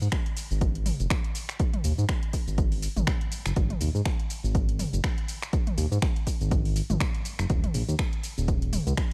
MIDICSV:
0, 0, Header, 1, 3, 480
1, 0, Start_track
1, 0, Tempo, 491803
1, 1559, Time_signature, 4, 2, 24, 8
1, 8912, End_track
2, 0, Start_track
2, 0, Title_t, "Analog synth bass"
2, 0, Program_c, 0, 38
2, 14, Note_on_c, 0, 44, 90
2, 77, Note_off_c, 0, 44, 0
2, 495, Note_on_c, 0, 32, 99
2, 890, Note_off_c, 0, 32, 0
2, 976, Note_on_c, 0, 30, 100
2, 1039, Note_off_c, 0, 30, 0
2, 1798, Note_on_c, 0, 39, 94
2, 1881, Note_off_c, 0, 39, 0
2, 1934, Note_on_c, 0, 44, 94
2, 1998, Note_off_c, 0, 44, 0
2, 2412, Note_on_c, 0, 32, 98
2, 2808, Note_off_c, 0, 32, 0
2, 2893, Note_on_c, 0, 32, 94
2, 2957, Note_off_c, 0, 32, 0
2, 3375, Note_on_c, 0, 30, 87
2, 3438, Note_off_c, 0, 30, 0
2, 3479, Note_on_c, 0, 32, 105
2, 3638, Note_off_c, 0, 32, 0
2, 3717, Note_on_c, 0, 39, 99
2, 3801, Note_off_c, 0, 39, 0
2, 3852, Note_on_c, 0, 44, 93
2, 3916, Note_off_c, 0, 44, 0
2, 4332, Note_on_c, 0, 32, 97
2, 4728, Note_off_c, 0, 32, 0
2, 4811, Note_on_c, 0, 30, 105
2, 4876, Note_off_c, 0, 30, 0
2, 5635, Note_on_c, 0, 39, 98
2, 5720, Note_off_c, 0, 39, 0
2, 5772, Note_on_c, 0, 44, 91
2, 5837, Note_off_c, 0, 44, 0
2, 6253, Note_on_c, 0, 32, 102
2, 6649, Note_off_c, 0, 32, 0
2, 6732, Note_on_c, 0, 32, 93
2, 6797, Note_off_c, 0, 32, 0
2, 7214, Note_on_c, 0, 30, 89
2, 7277, Note_off_c, 0, 30, 0
2, 7317, Note_on_c, 0, 27, 103
2, 7477, Note_off_c, 0, 27, 0
2, 7556, Note_on_c, 0, 34, 94
2, 7641, Note_off_c, 0, 34, 0
2, 7694, Note_on_c, 0, 39, 90
2, 7758, Note_off_c, 0, 39, 0
2, 8176, Note_on_c, 0, 27, 95
2, 8570, Note_off_c, 0, 27, 0
2, 8652, Note_on_c, 0, 37, 105
2, 8717, Note_off_c, 0, 37, 0
2, 8912, End_track
3, 0, Start_track
3, 0, Title_t, "Drums"
3, 19, Note_on_c, 9, 82, 53
3, 116, Note_off_c, 9, 82, 0
3, 116, Note_on_c, 9, 26, 116
3, 116, Note_on_c, 9, 42, 68
3, 118, Note_on_c, 9, 36, 122
3, 120, Note_on_c, 9, 82, 41
3, 214, Note_off_c, 9, 26, 0
3, 214, Note_off_c, 9, 42, 0
3, 216, Note_off_c, 9, 36, 0
3, 218, Note_off_c, 9, 82, 0
3, 254, Note_on_c, 9, 42, 45
3, 352, Note_off_c, 9, 42, 0
3, 357, Note_on_c, 9, 46, 97
3, 361, Note_on_c, 9, 82, 94
3, 455, Note_off_c, 9, 46, 0
3, 458, Note_off_c, 9, 82, 0
3, 498, Note_on_c, 9, 82, 55
3, 596, Note_off_c, 9, 82, 0
3, 597, Note_on_c, 9, 42, 69
3, 598, Note_on_c, 9, 36, 120
3, 601, Note_on_c, 9, 82, 40
3, 695, Note_off_c, 9, 42, 0
3, 696, Note_off_c, 9, 36, 0
3, 699, Note_off_c, 9, 82, 0
3, 735, Note_on_c, 9, 42, 46
3, 832, Note_off_c, 9, 42, 0
3, 837, Note_on_c, 9, 45, 77
3, 837, Note_on_c, 9, 46, 93
3, 841, Note_on_c, 9, 82, 96
3, 935, Note_off_c, 9, 45, 0
3, 935, Note_off_c, 9, 46, 0
3, 939, Note_off_c, 9, 82, 0
3, 974, Note_on_c, 9, 42, 32
3, 978, Note_on_c, 9, 82, 54
3, 1071, Note_off_c, 9, 42, 0
3, 1075, Note_off_c, 9, 82, 0
3, 1077, Note_on_c, 9, 26, 112
3, 1077, Note_on_c, 9, 42, 72
3, 1079, Note_on_c, 9, 36, 126
3, 1081, Note_on_c, 9, 82, 43
3, 1175, Note_off_c, 9, 26, 0
3, 1175, Note_off_c, 9, 42, 0
3, 1176, Note_off_c, 9, 36, 0
3, 1179, Note_off_c, 9, 82, 0
3, 1214, Note_on_c, 9, 42, 45
3, 1312, Note_off_c, 9, 42, 0
3, 1317, Note_on_c, 9, 46, 98
3, 1320, Note_on_c, 9, 82, 99
3, 1414, Note_off_c, 9, 46, 0
3, 1418, Note_off_c, 9, 82, 0
3, 1454, Note_on_c, 9, 26, 62
3, 1454, Note_on_c, 9, 42, 31
3, 1457, Note_on_c, 9, 82, 54
3, 1551, Note_off_c, 9, 26, 0
3, 1551, Note_off_c, 9, 42, 0
3, 1555, Note_off_c, 9, 82, 0
3, 1557, Note_on_c, 9, 42, 65
3, 1558, Note_on_c, 9, 36, 125
3, 1560, Note_on_c, 9, 82, 40
3, 1654, Note_off_c, 9, 42, 0
3, 1656, Note_off_c, 9, 36, 0
3, 1658, Note_off_c, 9, 82, 0
3, 1693, Note_on_c, 9, 42, 44
3, 1693, Note_on_c, 9, 45, 89
3, 1791, Note_off_c, 9, 42, 0
3, 1791, Note_off_c, 9, 45, 0
3, 1796, Note_on_c, 9, 46, 93
3, 1799, Note_on_c, 9, 82, 96
3, 1893, Note_off_c, 9, 46, 0
3, 1897, Note_off_c, 9, 82, 0
3, 1937, Note_on_c, 9, 82, 55
3, 2034, Note_off_c, 9, 82, 0
3, 2037, Note_on_c, 9, 26, 114
3, 2037, Note_on_c, 9, 42, 67
3, 2038, Note_on_c, 9, 36, 127
3, 2040, Note_on_c, 9, 82, 41
3, 2134, Note_off_c, 9, 26, 0
3, 2134, Note_off_c, 9, 42, 0
3, 2136, Note_off_c, 9, 36, 0
3, 2138, Note_off_c, 9, 82, 0
3, 2173, Note_on_c, 9, 42, 44
3, 2271, Note_off_c, 9, 42, 0
3, 2276, Note_on_c, 9, 46, 96
3, 2278, Note_on_c, 9, 36, 65
3, 2280, Note_on_c, 9, 82, 103
3, 2374, Note_off_c, 9, 46, 0
3, 2376, Note_off_c, 9, 36, 0
3, 2378, Note_off_c, 9, 82, 0
3, 2418, Note_on_c, 9, 82, 55
3, 2515, Note_off_c, 9, 82, 0
3, 2517, Note_on_c, 9, 42, 69
3, 2518, Note_on_c, 9, 36, 127
3, 2521, Note_on_c, 9, 82, 43
3, 2615, Note_off_c, 9, 42, 0
3, 2616, Note_off_c, 9, 36, 0
3, 2618, Note_off_c, 9, 82, 0
3, 2653, Note_on_c, 9, 46, 54
3, 2751, Note_off_c, 9, 46, 0
3, 2757, Note_on_c, 9, 46, 96
3, 2760, Note_on_c, 9, 82, 104
3, 2854, Note_off_c, 9, 46, 0
3, 2858, Note_off_c, 9, 82, 0
3, 2894, Note_on_c, 9, 42, 31
3, 2894, Note_on_c, 9, 45, 92
3, 2898, Note_on_c, 9, 82, 56
3, 2991, Note_off_c, 9, 42, 0
3, 2991, Note_off_c, 9, 45, 0
3, 2995, Note_off_c, 9, 82, 0
3, 2997, Note_on_c, 9, 26, 114
3, 2997, Note_on_c, 9, 42, 66
3, 2999, Note_on_c, 9, 36, 123
3, 3001, Note_on_c, 9, 82, 43
3, 3095, Note_off_c, 9, 26, 0
3, 3095, Note_off_c, 9, 42, 0
3, 3096, Note_off_c, 9, 36, 0
3, 3099, Note_off_c, 9, 82, 0
3, 3134, Note_on_c, 9, 42, 43
3, 3232, Note_off_c, 9, 42, 0
3, 3236, Note_on_c, 9, 46, 98
3, 3240, Note_on_c, 9, 82, 101
3, 3334, Note_off_c, 9, 46, 0
3, 3338, Note_off_c, 9, 82, 0
3, 3373, Note_on_c, 9, 26, 66
3, 3373, Note_on_c, 9, 42, 31
3, 3377, Note_on_c, 9, 82, 57
3, 3471, Note_off_c, 9, 26, 0
3, 3471, Note_off_c, 9, 42, 0
3, 3474, Note_off_c, 9, 82, 0
3, 3477, Note_on_c, 9, 42, 64
3, 3479, Note_on_c, 9, 36, 124
3, 3481, Note_on_c, 9, 82, 40
3, 3575, Note_off_c, 9, 42, 0
3, 3576, Note_off_c, 9, 36, 0
3, 3578, Note_off_c, 9, 82, 0
3, 3613, Note_on_c, 9, 42, 42
3, 3613, Note_on_c, 9, 45, 91
3, 3711, Note_off_c, 9, 42, 0
3, 3711, Note_off_c, 9, 45, 0
3, 3716, Note_on_c, 9, 46, 90
3, 3719, Note_on_c, 9, 82, 103
3, 3813, Note_off_c, 9, 46, 0
3, 3817, Note_off_c, 9, 82, 0
3, 3858, Note_on_c, 9, 82, 54
3, 3955, Note_off_c, 9, 82, 0
3, 3957, Note_on_c, 9, 26, 113
3, 3957, Note_on_c, 9, 42, 64
3, 3958, Note_on_c, 9, 36, 127
3, 3961, Note_on_c, 9, 82, 43
3, 4055, Note_off_c, 9, 26, 0
3, 4055, Note_off_c, 9, 42, 0
3, 4056, Note_off_c, 9, 36, 0
3, 4059, Note_off_c, 9, 82, 0
3, 4095, Note_on_c, 9, 42, 43
3, 4192, Note_off_c, 9, 42, 0
3, 4197, Note_on_c, 9, 46, 90
3, 4201, Note_on_c, 9, 82, 103
3, 4295, Note_off_c, 9, 46, 0
3, 4298, Note_off_c, 9, 82, 0
3, 4339, Note_on_c, 9, 82, 57
3, 4437, Note_off_c, 9, 82, 0
3, 4438, Note_on_c, 9, 42, 65
3, 4439, Note_on_c, 9, 36, 126
3, 4442, Note_on_c, 9, 82, 43
3, 4536, Note_off_c, 9, 36, 0
3, 4536, Note_off_c, 9, 42, 0
3, 4539, Note_off_c, 9, 82, 0
3, 4575, Note_on_c, 9, 42, 45
3, 4672, Note_off_c, 9, 42, 0
3, 4678, Note_on_c, 9, 45, 78
3, 4678, Note_on_c, 9, 46, 88
3, 4682, Note_on_c, 9, 82, 99
3, 4776, Note_off_c, 9, 45, 0
3, 4776, Note_off_c, 9, 46, 0
3, 4779, Note_off_c, 9, 82, 0
3, 4814, Note_on_c, 9, 42, 30
3, 4818, Note_on_c, 9, 82, 58
3, 4912, Note_off_c, 9, 42, 0
3, 4916, Note_off_c, 9, 82, 0
3, 4917, Note_on_c, 9, 26, 111
3, 4917, Note_on_c, 9, 42, 66
3, 4918, Note_on_c, 9, 36, 127
3, 4921, Note_on_c, 9, 82, 43
3, 5015, Note_off_c, 9, 26, 0
3, 5015, Note_off_c, 9, 42, 0
3, 5016, Note_off_c, 9, 36, 0
3, 5018, Note_off_c, 9, 82, 0
3, 5054, Note_on_c, 9, 42, 42
3, 5152, Note_off_c, 9, 42, 0
3, 5157, Note_on_c, 9, 46, 94
3, 5160, Note_on_c, 9, 82, 102
3, 5254, Note_off_c, 9, 46, 0
3, 5258, Note_off_c, 9, 82, 0
3, 5294, Note_on_c, 9, 26, 64
3, 5294, Note_on_c, 9, 42, 30
3, 5298, Note_on_c, 9, 82, 55
3, 5392, Note_off_c, 9, 26, 0
3, 5392, Note_off_c, 9, 42, 0
3, 5396, Note_off_c, 9, 82, 0
3, 5397, Note_on_c, 9, 42, 65
3, 5398, Note_on_c, 9, 36, 127
3, 5401, Note_on_c, 9, 82, 40
3, 5495, Note_off_c, 9, 42, 0
3, 5496, Note_off_c, 9, 36, 0
3, 5498, Note_off_c, 9, 82, 0
3, 5534, Note_on_c, 9, 42, 45
3, 5534, Note_on_c, 9, 45, 92
3, 5632, Note_off_c, 9, 42, 0
3, 5632, Note_off_c, 9, 45, 0
3, 5638, Note_on_c, 9, 46, 88
3, 5641, Note_on_c, 9, 82, 99
3, 5735, Note_off_c, 9, 46, 0
3, 5739, Note_off_c, 9, 82, 0
3, 5779, Note_on_c, 9, 82, 54
3, 5876, Note_off_c, 9, 82, 0
3, 5878, Note_on_c, 9, 26, 101
3, 5878, Note_on_c, 9, 36, 127
3, 5878, Note_on_c, 9, 42, 64
3, 5881, Note_on_c, 9, 82, 41
3, 5975, Note_off_c, 9, 26, 0
3, 5975, Note_off_c, 9, 42, 0
3, 5976, Note_off_c, 9, 36, 0
3, 5979, Note_off_c, 9, 82, 0
3, 6015, Note_on_c, 9, 42, 45
3, 6113, Note_off_c, 9, 42, 0
3, 6117, Note_on_c, 9, 46, 88
3, 6118, Note_on_c, 9, 36, 66
3, 6121, Note_on_c, 9, 82, 98
3, 6214, Note_off_c, 9, 46, 0
3, 6216, Note_off_c, 9, 36, 0
3, 6218, Note_off_c, 9, 82, 0
3, 6255, Note_on_c, 9, 42, 31
3, 6258, Note_on_c, 9, 82, 56
3, 6352, Note_off_c, 9, 42, 0
3, 6356, Note_off_c, 9, 82, 0
3, 6357, Note_on_c, 9, 42, 65
3, 6358, Note_on_c, 9, 36, 124
3, 6361, Note_on_c, 9, 82, 42
3, 6455, Note_off_c, 9, 42, 0
3, 6456, Note_off_c, 9, 36, 0
3, 6458, Note_off_c, 9, 82, 0
3, 6494, Note_on_c, 9, 46, 53
3, 6591, Note_off_c, 9, 46, 0
3, 6596, Note_on_c, 9, 46, 87
3, 6600, Note_on_c, 9, 82, 98
3, 6694, Note_off_c, 9, 46, 0
3, 6698, Note_off_c, 9, 82, 0
3, 6733, Note_on_c, 9, 42, 31
3, 6733, Note_on_c, 9, 45, 95
3, 6737, Note_on_c, 9, 82, 57
3, 6831, Note_off_c, 9, 42, 0
3, 6831, Note_off_c, 9, 45, 0
3, 6834, Note_off_c, 9, 82, 0
3, 6836, Note_on_c, 9, 26, 107
3, 6836, Note_on_c, 9, 42, 66
3, 6838, Note_on_c, 9, 36, 121
3, 6840, Note_on_c, 9, 82, 42
3, 6934, Note_off_c, 9, 26, 0
3, 6934, Note_off_c, 9, 42, 0
3, 6935, Note_off_c, 9, 36, 0
3, 6938, Note_off_c, 9, 82, 0
3, 6974, Note_on_c, 9, 42, 43
3, 7071, Note_off_c, 9, 42, 0
3, 7077, Note_on_c, 9, 46, 90
3, 7080, Note_on_c, 9, 82, 102
3, 7174, Note_off_c, 9, 46, 0
3, 7178, Note_off_c, 9, 82, 0
3, 7213, Note_on_c, 9, 26, 61
3, 7213, Note_on_c, 9, 42, 31
3, 7217, Note_on_c, 9, 82, 58
3, 7311, Note_off_c, 9, 26, 0
3, 7311, Note_off_c, 9, 42, 0
3, 7314, Note_off_c, 9, 82, 0
3, 7316, Note_on_c, 9, 42, 65
3, 7318, Note_on_c, 9, 36, 117
3, 7320, Note_on_c, 9, 82, 41
3, 7414, Note_off_c, 9, 42, 0
3, 7416, Note_off_c, 9, 36, 0
3, 7418, Note_off_c, 9, 82, 0
3, 7454, Note_on_c, 9, 42, 45
3, 7454, Note_on_c, 9, 45, 96
3, 7552, Note_off_c, 9, 42, 0
3, 7552, Note_off_c, 9, 45, 0
3, 7556, Note_on_c, 9, 46, 90
3, 7560, Note_on_c, 9, 82, 92
3, 7654, Note_off_c, 9, 46, 0
3, 7658, Note_off_c, 9, 82, 0
3, 7697, Note_on_c, 9, 82, 53
3, 7795, Note_off_c, 9, 82, 0
3, 7797, Note_on_c, 9, 26, 105
3, 7797, Note_on_c, 9, 42, 68
3, 7798, Note_on_c, 9, 36, 122
3, 7801, Note_on_c, 9, 82, 38
3, 7895, Note_off_c, 9, 26, 0
3, 7895, Note_off_c, 9, 42, 0
3, 7896, Note_off_c, 9, 36, 0
3, 7899, Note_off_c, 9, 82, 0
3, 7934, Note_on_c, 9, 42, 45
3, 8031, Note_off_c, 9, 42, 0
3, 8037, Note_on_c, 9, 46, 87
3, 8041, Note_on_c, 9, 82, 96
3, 8134, Note_off_c, 9, 46, 0
3, 8138, Note_off_c, 9, 82, 0
3, 8178, Note_on_c, 9, 82, 54
3, 8275, Note_off_c, 9, 82, 0
3, 8278, Note_on_c, 9, 36, 116
3, 8278, Note_on_c, 9, 42, 67
3, 8281, Note_on_c, 9, 82, 41
3, 8375, Note_off_c, 9, 42, 0
3, 8376, Note_off_c, 9, 36, 0
3, 8379, Note_off_c, 9, 82, 0
3, 8415, Note_on_c, 9, 42, 44
3, 8512, Note_off_c, 9, 42, 0
3, 8518, Note_on_c, 9, 45, 87
3, 8518, Note_on_c, 9, 46, 92
3, 8522, Note_on_c, 9, 82, 98
3, 8616, Note_off_c, 9, 45, 0
3, 8616, Note_off_c, 9, 46, 0
3, 8619, Note_off_c, 9, 82, 0
3, 8655, Note_on_c, 9, 42, 31
3, 8658, Note_on_c, 9, 82, 55
3, 8752, Note_off_c, 9, 42, 0
3, 8756, Note_off_c, 9, 82, 0
3, 8759, Note_on_c, 9, 26, 106
3, 8759, Note_on_c, 9, 36, 119
3, 8759, Note_on_c, 9, 42, 71
3, 8762, Note_on_c, 9, 82, 41
3, 8856, Note_off_c, 9, 26, 0
3, 8856, Note_off_c, 9, 36, 0
3, 8856, Note_off_c, 9, 42, 0
3, 8860, Note_off_c, 9, 82, 0
3, 8912, End_track
0, 0, End_of_file